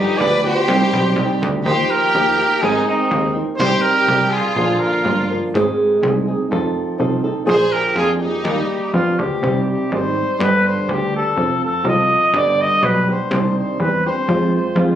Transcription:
Already playing: nylon-string guitar G2 D3 F3 B3 D4 G4, violin section D#4, trumpet G4
0.18 analog synth bass D2, nylon-string guitar F3 B3 D4, violin section B4, trumpet D5
0.22 nylon-string guitar G4
0.43 nylon-string guitar F3 B3 D4 G4, violin section G4, trumpet C5
0.68 analog synth bass C2, nylon-string guitar C3 G3 C4 D#4 G4
0.93 analog synth bass B1
1.16 analog synth bass C2, nylon-string guitar G3 C4 D#4 G4
1.42 analog synth bass D2
1.65 analog synth bass D#2, nylon-string guitar D#3 F3 A#3 D#4 G4, violin section G4, trumpet C5
1.90 violin section G4, trumpet A#4
2.15 analog synth bass D#2, nylon-string guitar F3 A#3 D#4 G4
2.39 nylon-string guitar A#3 D#4 G4
2.62 analog synth bass G#1, nylon-string guitar G#3 C4 D#4 A#4, violin section D#4, trumpet G#4
2.87 violin section C4, trumpet D#4
3.11 analog synth bass D#2, nylon-string guitar G#3 C4 D#4 A#4
3.36 nylon-string guitar C4 D#4 A#4
3.57 analog synth bass C2, nylon-string guitar C3 G3 C4 D#4, trumpet C5
3.61 nylon-string guitar G4, violin section G4
3.81 violin section G4, trumpet A#4
4.08 analog synth bass C2, nylon-string guitar G3 C4 D#4 G4
4.30 violin section F4, trumpet G#4
4.56 analog synth bass A#1, nylon-string guitar A#2 D3 F3 A#3 D4 A#4
4.79 violin section F4, trumpet A#4
5.05 analog synth bass G1, nylon-string guitar F3 A#3 D4 A#4
5.31 nylon-string guitar F3 A#3 D4 A#4
5.54 analog synth bass G#1, nylon-string guitar G#2 D#3 G#3 C4 D#4 G#4
6.01 analog synth bass C2, nylon-string guitar G#3 C4 D#4 G#4
6.28 nylon-string guitar G#3 C4 D#4 G#4
6.51 analog synth bass F1, nylon-string guitar F3 C4 D#4 A4
6.98 analog synth bass C2, nylon-string guitar F3 C4 D#4 A4
7.24 nylon-string guitar C4 D#4 A4
7.45 analog synth bass A#1, nylon-string guitar A#2 D3 F3 A#3 D4 G#4, trumpet C5
7.50 violin section G#4
7.72 violin section G4, trumpet A#4
7.95 analog synth bass F2, nylon-string guitar F3 A#3 D4 G#4, violin section F4, trumpet G#4
8.21 nylon-string guitar F3 A#3 D4 G#4, violin section D#4, trumpet G4
8.43 analog synth bass D#2, nylon-string guitar D#3 G3 A#3 D#4 G4
8.93 analog synth bass F2, nylon-string guitar F3 B3 D4 G4, trumpet F4
9.19 analog synth bass D2, trumpet G4
9.42 analog synth bass C2, nylon-string guitar C3 G3 C4 D#4 G4
9.69 trumpet G4
9.92 analog synth bass G#1, nylon-string guitar G3 C4 D#4 G4, trumpet C5
10.39 analog synth bass G1, nylon-string guitar G2 D3 G3 B3 D4 G4, trumpet B4
10.67 trumpet C5
10.89 analog synth bass D2, nylon-string guitar G3 B3 D4 G4, trumpet G4
11.16 trumpet A4
11.37 analog synth bass F1, nylon-string guitar F3 C4 F4 A4
11.64 trumpet A4
11.84 analog synth bass C2, nylon-string guitar F3 C4 F4 A4, trumpet D#5
12.33 analog synth bass G1, nylon-string guitar G2 D3 G3 B3 D4 G4, trumpet D5
12.61 trumpet D#5
12.82 analog synth bass B1, nylon-string guitar G3 B3 D4 G4, trumpet B4
13.08 nylon-string guitar G3 B3 D4 G4, trumpet C5
13.31 analog synth bass C2, nylon-string guitar C3 D#3 G3 C4 D4 G4
13.58 trumpet C5
13.80 analog synth bass E2, nylon-string guitar G3 C4 D4 G4, trumpet B4
14.06 nylon-string guitar G3 C4 D4 G4, trumpet C5
14.28 analog synth bass F2, nylon-string guitar F3 G#3 C4 F4 G4
14.55 trumpet C5
14.76 analog synth bass F2, nylon-string guitar G#3 C4 F4 G4, trumpet F4

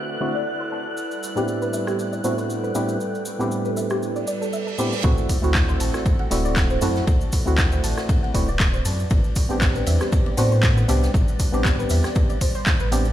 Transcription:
Already playing: synth stab D3 A3 C4 E4 F#4, analog synth pad E4 F#4 A4 B4 D5 F#5, string machine F#6
0.09 synth arpeggio sound F#5
0.20 synth stab D3 A3 C4 E4 F#4, synth arpeggio sound D5
0.35 synth arpeggio sound D5
0.60 synth arpeggio sound C5
0.72 synth arpeggio sound A5
0.97 analog synth pad G3 A4, cabasa
1.11 cabasa
1.23 cabasa
1.35 synth stab A2 B3 C4 D4 E4 G4, synth arpeggio sound G4, cabasa
1.48 cabasa
1.60 analog synth pad G4, synth arpeggio sound B4, cabasa
1.73 synth arpeggio sound E5, cabasa
1.87 synth arpeggio sound G4, cross-stick, cabasa
1.99 cabasa
2.13 synth arpeggio sound D5, cabasa
2.24 synth stab A2 B3 C4 D4 E4 F#4, synth arpeggio sound C5, cabasa
2.38 synth arpeggio sound C5, cabasa
2.50 cabasa
2.64 synth arpeggio sound B4, cabasa
2.75 synth stab A2 B3 C4 D4 E4 G4, synth arpeggio sound E5, cabasa
2.89 cabasa
3.00 cabasa
3.15 cabasa
3.25 cabasa
3.39 synth stab A2 B3 C4 D4 E4 G4, synth arpeggio sound G4, cabasa
3.51 cabasa
3.65 synth arpeggio sound B4, cabasa
3.77 synth arpeggio sound E5, cabasa
3.90 synth arpeggio sound G4, cross-stick, cabasa
4.02 reverse cymbal, cabasa
4.16 synth arpeggio sound D5, cabasa
4.27 synth arpeggio sound D5, cabasa
4.41 synth arpeggio sound A4, cabasa
4.53 synth arpeggio sound E5, cabasa
4.67 synth arpeggio sound A4, cabasa
4.78 synth stab A2 B3 C4 D4 E4 G4, synth arpeggio sound C5, cabasa
4.92 cabasa
5.03 sub bass D2, synth stab A3 C4 E4 F#4, analog synth pad C4 F#4 A4 D5, kick, ride, sub drop, cabasa
5.18 cabasa
5.29 kick, open hi-hat, ride, cabasa
5.42 sub bass D2, synth stab A3 C4 E4 F#4, synth arpeggio sound F#4, cabasa
5.55 kick, snare, clap, ride, cabasa
5.69 synth arpeggio sound C5, cabasa
5.80 sub bass A1, synth arpeggio sound A5, open hi-hat, ride, cabasa
5.94 synth arpeggio sound F#4, cross-stick, snare, cabasa
6.06 kick, ride, cabasa
6.19 synth arpeggio sound F#5, ride
6.31 sub bass D1, synth stab A3 C4 E4 F#4, synth arpeggio sound D5, snare, open hi-hat, ride, cabasa
6.45 synth arpeggio sound D5, cabasa
6.56 kick, snare, clap, ride, cabasa
6.70 synth arpeggio sound C5, cabasa
6.81 sub bass F#2, synth stab A3 C4 E4 F#4, synth arpeggio sound A5, open hi-hat, ride, cabasa
6.95 snare, cabasa
7.07 sub bass D2, analog synth pad B4, kick, ride, cabasa
7.21 cabasa
7.32 kick, open hi-hat, ride, cabasa
7.45 sub bass D2, synth stab A3 C4 E4 F#4, synth arpeggio sound F#4, cabasa
7.58 kick, snare, clap, ride, cabasa
7.72 synth arpeggio sound C5, cabasa
7.84 sub bass A1, synth arpeggio sound A5, open hi-hat, ride, cabasa
7.98 synth arpeggio sound F#4, cross-stick, snare, cabasa
8.09 kick, ride, cabasa
8.23 synth arpeggio sound F#5, ride
8.34 sub bass D1, synth stab A3 C4 E4 F#4, synth arpeggio sound D5, kick, open hi-hat, ride, cabasa
8.48 synth arpeggio sound D5, cabasa
8.60 kick, snare, clap, ride, cabasa
8.74 synth arpeggio sound C5, cabasa
8.85 sub bass F#2, synth arpeggio sound A5, open hi-hat, ride, cabasa
8.99 cabasa
9.10 sub bass A1, analog synth pad G3 B4, kick, ride, cabasa
9.24 cabasa
9.36 kick, open hi-hat, ride, cabasa
9.49 sub bass A1, synth stab B3 C4 D4 G4, synth arpeggio sound G4, cabasa
9.61 kick, snare, clap, ride, cabasa
9.75 synth arpeggio sound B4, cabasa
9.86 sub bass E2, synth arpeggio sound E5, open hi-hat, ride, cabasa
10.00 synth arpeggio sound G4, cross-stick, snare, cabasa
10.12 kick, ride, cabasa
10.26 synth arpeggio sound D5, ride
10.37 sub bass A2, synth stab B3 C4 D4 F#4, synth arpeggio sound C5, snare, open hi-hat, ride, cabasa
10.52 synth arpeggio sound C5, cabasa
10.62 kick, snare, clap, ride, cabasa
10.77 synth arpeggio sound B4, cabasa
10.88 sub bass C2, synth stab B3 C4 D4 G4, synth arpeggio sound E5, open hi-hat, ride, cabasa
11.02 snare, cabasa
11.14 sub bass A1, kick, ride, cabasa
11.28 cabasa
11.39 kick, open hi-hat, ride, cabasa
11.52 sub bass A1, synth stab B3 C4 D4 G4, synth arpeggio sound G4, cabasa
11.64 kick, snare, clap, ride, cabasa
11.79 synth arpeggio sound B4, cabasa
11.89 sub bass E2, synth arpeggio sound E5, open hi-hat, ride, cabasa
12.04 synth arpeggio sound G4, cross-stick, snare, cabasa
12.15 kick, ride, cabasa
12.30 synth arpeggio sound D5, ride, cabasa
12.41 synth arpeggio sound C5, kick, open hi-hat, ride, cabasa
12.55 synth arpeggio sound C5, cabasa
12.66 kick, snare, clap, ride, cabasa
12.80 sub bass A1, synth arpeggio sound B4, cabasa
12.92 synth stab B3 C4 D4 G4, synth arpeggio sound E5, open hi-hat, ride, cabasa
13.05 cabasa

